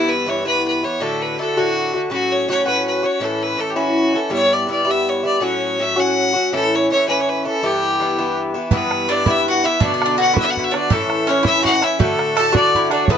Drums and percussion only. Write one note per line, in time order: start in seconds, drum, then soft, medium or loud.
8.71 bodhran medium
8.91 bodhran medium
9.26 bodhran medium
9.81 bodhran medium
10.02 bodhran medium
10.37 bodhran medium
10.57 bodhran soft
10.74 bodhran medium
10.91 bodhran medium
11.10 bodhran medium
11.45 bodhran medium
11.65 bodhran soft
11.82 bodhran medium
12.00 bodhran medium
12.19 bodhran medium
12.37 bodhran medium
12.55 bodhran medium
12.75 bodhran soft
12.91 bodhran medium
13.08 bodhran medium